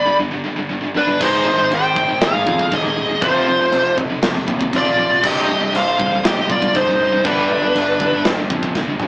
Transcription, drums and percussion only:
1.21 kick, crash, china
1.71 china
1.96 kick
2.21 snare, china
2.47 kick
2.59 kick
2.72 kick, china
3.22 kick, china
3.72 china
3.98 kick
4.22 snare, china
4.48 kick
4.61 kick
4.73 kick, china
5.23 kick, china, crash
5.75 china
6.00 kick
6.25 snare, china
6.50 kick
6.62 kick
6.75 kick, china
7.25 kick, china
7.75 china
8.00 kick
8.25 snare, china
8.50 kick
8.63 kick
8.75 kick, snare
9.00 mid tom

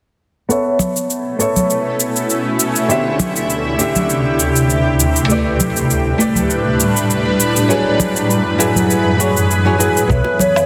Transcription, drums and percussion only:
0.50 cabasa
0.79 high conga, cabasa
0.96 cabasa
1.10 cabasa
1.40 cabasa
1.56 high conga, cabasa
1.70 cabasa
2.00 cabasa
2.16 cabasa
2.30 cabasa
2.60 cabasa
2.76 cabasa
2.90 cabasa
3.19 high conga, cabasa
3.36 cabasa
3.50 cabasa
3.80 cabasa
3.96 high conga, cabasa
4.10 cabasa
4.40 cabasa
4.56 cabasa
4.70 cabasa
5.00 cabasa
5.16 cabasa
5.30 cabasa
5.60 high conga, cabasa
5.76 cabasa
5.91 cabasa
6.21 cabasa
6.35 high conga, cabasa
6.50 cabasa
6.80 cabasa
6.97 cabasa
7.10 cabasa
7.40 cabasa
7.56 cabasa
7.70 cabasa
8.00 high conga, cabasa
8.16 cabasa
8.31 cabasa
8.60 cabasa
8.76 high conga, cabasa
8.90 cabasa
9.21 cabasa
9.37 cabasa
9.51 cabasa
9.81 cabasa
9.97 cabasa
10.10 kick, cabasa
10.24 high bongo
10.39 high conga, cabasa
10.56 cabasa, low woodblock

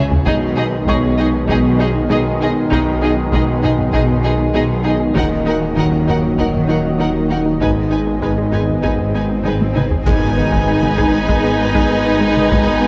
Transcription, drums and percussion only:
0.11 taiko low
0.26 taiko
0.88 taiko
1.49 taiko
2.71 taiko
3.33 taiko
3.64 taiko low-mid
3.79 taiko low-mid
3.94 taiko
4.10 taiko low-mid
5.16 taiko
5.77 taiko
6.08 taiko low-mid
6.24 taiko low-mid
6.39 taiko
6.55 taiko low-mid
7.61 taiko
8.23 taiko
8.53 taiko low-mid
8.69 taiko low-mid
8.84 taiko
8.99 taiko low-mid
9.45 taiko high
9.61 taiko high
9.76 taiko mid
9.91 taiko low
10.06 taiko
10.52 taiko
10.83 taiko mid
10.98 taiko
11.29 taiko
11.76 taiko
12.37 taiko mid
12.52 taiko

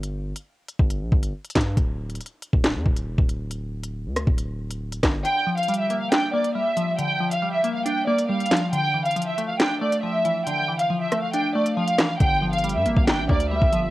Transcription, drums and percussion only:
0.03 closed hi-hat
0.36 closed hi-hat
0.68 closed hi-hat
0.79 kick
0.90 closed hi-hat
1.12 kick
1.23 closed hi-hat
1.45 closed hi-hat
1.50 closed hi-hat
1.55 kick, snare, clap, closed hi-hat
1.61 closed hi-hat
1.77 kick, closed hi-hat
2.10 closed hi-hat
2.15 closed hi-hat
2.21 closed hi-hat
2.26 closed hi-hat
2.42 closed hi-hat
2.53 kick
2.64 snare, clap, closed hi-hat
2.86 kick
2.97 closed hi-hat
3.18 kick
3.29 closed hi-hat
3.51 closed hi-hat
3.84 closed hi-hat
4.16 cross-stick, closed hi-hat
4.27 kick
4.38 closed hi-hat
4.71 closed hi-hat
4.92 closed hi-hat
5.03 kick, cross-stick, snare, clap, closed hi-hat
5.25 closed hi-hat
5.58 closed hi-hat
5.63 closed hi-hat
5.68 closed hi-hat
5.74 closed hi-hat
5.90 closed hi-hat
6.12 snare, clap, closed hi-hat
6.45 closed hi-hat
6.77 closed hi-hat
6.99 closed hi-hat
7.32 closed hi-hat
7.64 closed hi-hat
7.86 closed hi-hat
8.18 closed hi-hat
8.40 closed hi-hat
8.46 closed hi-hat
8.51 snare, clap, closed hi-hat
8.56 closed hi-hat
8.73 closed hi-hat
9.05 closed hi-hat
9.11 closed hi-hat
9.16 closed hi-hat
9.22 closed hi-hat
9.38 closed hi-hat
9.60 snare, clap, closed hi-hat
9.92 closed hi-hat
10.25 closed hi-hat
10.47 closed hi-hat
10.79 closed hi-hat
11.12 cross-stick, closed hi-hat
11.34 closed hi-hat
11.66 closed hi-hat
11.88 closed hi-hat
11.99 cross-stick, snare, clap, closed hi-hat
12.21 kick, closed hi-hat
12.53 closed hi-hat
12.59 closed hi-hat
12.64 closed hi-hat
12.69 closed hi-hat
12.86 closed hi-hat
12.97 kick
13.08 snare, clap, closed hi-hat
13.29 kick
13.40 closed hi-hat
13.62 kick
13.73 closed hi-hat

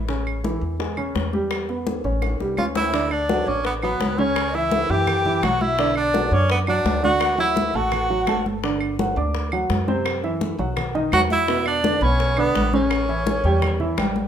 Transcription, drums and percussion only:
0.09 high bongo, high conga
0.27 high conga, claves
0.44 high bongo, high conga
0.62 high conga
0.80 high bongo, high conga
0.97 high conga, claves
1.16 high bongo, low bongo, high conga
1.33 high conga
1.51 high bongo, high conga, claves
1.69 high bongo, high conga
1.87 high bongo, high conga
2.04 high bongo, high conga
2.22 high bongo, high conga, claves
2.40 high bongo, high conga
2.57 low bongo, high conga, claves
2.75 low bongo, high conga
2.94 high bongo, high conga
3.11 high conga, claves
3.29 high bongo, high conga
3.47 high conga
3.65 high bongo, high conga
3.83 high conga, claves
4.01 high bongo, low bongo, high conga
4.18 high conga
4.36 high bongo, high conga, claves
4.54 high bongo, high conga
4.71 high bongo, high conga
4.89 high bongo, high conga
5.07 high bongo, high conga, low conga, claves
5.25 high conga, low conga
5.43 high bongo, low bongo, high conga, claves
5.61 high bongo, high conga
5.79 high bongo, high conga
5.96 high conga, claves
6.14 high bongo, high conga
6.32 high conga
6.50 high bongo, high conga
6.67 high conga, claves
6.86 high bongo, low bongo, high conga
7.04 high conga
7.20 high bongo, high conga, claves
7.39 high bongo, high conga
7.56 high bongo, high conga
7.74 high bongo, high conga
7.92 high bongo, high conga, low conga, claves
8.10 high conga
8.27 high bongo, low bongo, high conga, claves
8.46 high bongo, high conga
8.64 high bongo, high conga
8.81 high conga, claves
8.99 high bongo, high conga
9.17 high conga
9.35 high bongo, high conga
9.52 high conga, claves
9.70 high bongo, low bongo, high conga
9.88 high conga
10.05 high bongo, high conga, claves
10.24 high bongo, high conga
10.41 high bongo, high conga
10.59 high bongo, high conga
10.77 high bongo, high conga, low conga, claves
10.95 high conga, low conga
11.12 high bongo, low bongo, high conga, claves
11.30 high bongo, high conga
11.48 high bongo, high conga
11.66 high conga, claves
11.84 high bongo, high conga
12.02 high conga
12.20 high bongo, high conga
12.37 high conga, claves
12.55 high bongo, low bongo, high conga
12.73 high conga
12.90 high bongo, high conga, claves
13.09 high bongo, high conga
13.26 high bongo, high conga
13.44 high bongo, high conga
13.62 high bongo, high conga, low conga, claves
13.80 high conga, low conga
13.98 high bongo, low bongo, high conga, claves
14.16 high bongo, high conga

